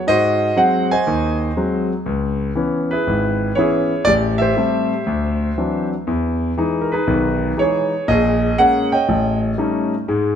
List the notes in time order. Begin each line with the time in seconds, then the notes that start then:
0.07 G#2 F#4 C5 D#5
0.56 F#3 G#3 C4 F#5
0.91 C5 D#5 G#5
1.07 D#2 D#3
1.57 F#3 G#3 C4
2.06 C#2
2.55 E3 B3 C#4
2.91 E4 G#4 B4
3.07 G#1
3.55 E3 B3 C#4 E4 G#4 C#5
4.05 A1 G4 D5
4.38 G4 C5 E5
4.57 G3 A3 C4
5.07 D2
5.58 E3 F#3 C4 D4
6.07 E2
6.58 E3 G#3 D#4
6.81 A#4
6.92 D#4 G#4 B4
7.07 B1 D#3
7.57 E3 G#3 D#4 C#5
7.61 G#4
8.08 A#1 A#2 G#4 D#5
8.58 G#3 A#3 C#4 F#5
8.92 C#5 D#5 G5
9.09 A1
9.58 G3 A3 C#4 D#4
10.08 G#2 G#3